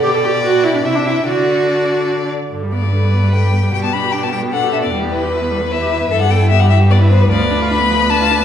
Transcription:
0.03 0.86 B2 medium
0.03 0.13 G4 medium
0.03 0.86 D5 medium
0.03 0.81 G5 medium
0.14 0.18 A4 medium
0.24 0.32 G4 medium
0.44 0.65 F#4 medium
0.64 0.74 E4 medium
0.74 0.79 D4 medium
0.84 1.26 C3 medium
0.84 0.97 E4 medium
0.84 1.27 E5 soft
0.84 1.29 G5 soft
0.95 1.07 D4 medium
1.05 1.26 E4 medium
1.27 2.30 D3 medium
1.27 2.09 F#4 medium
1.27 2.30 D5 soft
1.27 2.33 D5 soft
2.53 3.69 G2 soft
2.53 2.64 D3 soft
2.63 2.74 G3 soft
2.73 2.84 B3 soft
2.73 3.30 D5 soft
2.83 2.94 G3 soft
2.93 3.05 D3 soft
2.93 3.69 B4 soft
3.03 3.15 G3 soft
3.14 3.25 B3 soft
3.24 3.35 G3 soft
3.34 3.45 D3 soft
3.34 3.73 G5 medium
3.43 3.55 G3 soft
3.53 3.65 B3 soft
3.63 3.73 G3 soft
3.73 4.90 B2 soft
3.73 3.85 G3 soft
3.73 4.54 G4 soft
3.73 3.83 G5 medium
3.84 3.96 B3 soft
3.84 3.95 A5 medium
3.93 4.05 D4 soft
3.93 4.14 B5 medium
4.04 4.15 G4 soft
4.12 4.25 D4 soft
4.12 4.25 G5 medium
4.23 4.34 B3 soft
4.23 4.32 A5 medium
4.32 4.44 G3 soft
4.32 4.40 G5 medium
4.43 4.55 B3 soft
4.53 4.64 D4 soft
4.53 4.92 A4 soft
4.53 4.72 F#5 medium
4.63 4.74 G4 soft
4.73 4.85 D4 soft
4.73 4.77 E5 medium
4.83 4.93 B3 soft
4.83 4.92 D5 soft
4.92 6.09 E2 medium
4.92 5.04 G3 soft
4.92 5.31 G4 soft
5.03 5.14 B3 soft
5.12 5.24 E4 soft
5.12 5.73 B4 medium
5.23 5.34 G4 soft
5.32 5.43 E4 soft
5.32 6.13 B4 soft
5.42 5.53 B3 soft
5.51 5.63 G3 soft
5.61 5.73 B3 soft
5.71 5.83 E4 soft
5.71 6.10 E5 medium
5.81 5.93 G4 soft
5.91 6.03 E4 soft
6.01 6.11 B3 soft
6.11 7.28 G2 medium
6.11 6.23 E3 soft
6.11 6.51 A4 medium
6.11 6.20 E5 medium
6.21 6.32 G3 soft
6.21 6.32 F#5 medium
6.31 6.42 B3 soft
6.31 6.50 G5 medium
6.41 6.53 E4 soft
6.50 6.62 B3 soft
6.50 6.92 G4 medium
6.50 6.61 E5 medium
6.60 6.73 G3 soft
6.60 6.69 F#5 medium
6.70 6.82 E3 soft
6.70 6.78 E5 medium
6.81 6.92 G3 soft
6.90 7.02 B3 medium
6.90 7.29 B4 medium
6.90 6.99 D5 medium
7.00 7.12 E4 soft
7.10 7.22 B3 soft
7.10 7.23 C5 medium
7.20 7.30 G3 soft
7.20 7.30 B4 medium
7.30 8.45 D2 medium
7.30 7.42 F3 soft
7.30 8.45 B4 medium
7.30 7.69 D5 medium
7.41 7.53 B3 soft
7.51 7.63 D4 soft
7.61 7.72 F4 soft
7.70 7.82 D4 soft
7.70 8.11 B5 medium
7.81 7.92 B3 soft
7.90 8.03 F3 medium
8.01 8.12 B3 soft
8.10 8.22 D4 medium
8.10 8.45 A5 medium
8.21 8.32 F4 medium
8.31 8.42 D4 medium
8.40 8.45 B3 medium

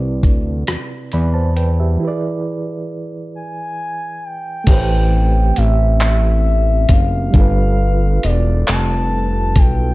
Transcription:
0.00 0.26 C2 medium
0.00 1.95 C3 medium
0.00 1.96 C4 medium
0.00 1.97 E4 medium
0.00 1.10 B4 medium
0.00 1.12 D5 medium
0.23 0.64 D2 medium
0.23 kick medium
0.23 closed hi-hat soft
0.67 0.77 E2 soft
0.67 cross-stick loud
0.67 closed hi-hat medium
1.12 1.98 E2 medium
1.12 1.34 D5 soft
1.12 1.34 B5 medium
1.12 closed hi-hat soft
1.34 1.56 C5 medium
1.34 1.55 A5 medium
1.57 1.78 B4 medium
1.57 1.78 G5 medium
1.57 closed hi-hat soft
1.80 2.01 G4 soft
1.80 2.21 E5 medium
1.98 4.62 E3 medium
1.98 4.63 E4 medium
2.02 2.08 G4 soft
2.02 4.65 B4 medium
2.08 4.68 G#4 medium
2.08 4.67 D5 medium
3.35 4.26 G#5 medium
4.24 5.58 G5 loud
4.64 5.53 A1 loud
4.64 7.30 E3 medium
4.64 7.28 A3 medium
4.64 7.31 A3 medium
4.64 7.31 C4 medium
4.64 7.31 G4 medium
4.64 kick medium
4.64 closed hi-hat medium
4.64 crash medium
4.69 7.31 G4 medium
4.69 7.32 B4 medium
4.74 7.33 C5 medium
5.56 6.87 A1 medium
5.56 6.01 E5 loud
5.56 closed hi-hat medium
6.00 6.92 E5 loud
6.00 clap loud
6.00 closed hi-hat medium
6.89 7.30 F#1 medium
6.89 8.25 F5 loud
6.89 kick medium
6.89 closed hi-hat medium
7.30 9.94 G3 medium
7.30 9.94 D4 medium
7.30 kick loud
7.30 closed hi-hat medium
7.35 8.19 G1 loud
7.35 9.94 G3 medium
7.35 9.94 F4 medium
7.35 9.94 A4 medium
7.35 9.94 B4 medium
7.41 9.94 B4 medium
8.23 8.64 E1 medium
8.23 8.68 D5 loud
8.23 closed hi-hat medium
8.67 9.58 F1 loud
8.67 9.59 A5 loud
8.67 clap loud
8.67 closed hi-hat medium
9.56 9.94 B1 medium
9.56 9.94 G5 loud
9.56 kick medium
9.56 closed hi-hat medium

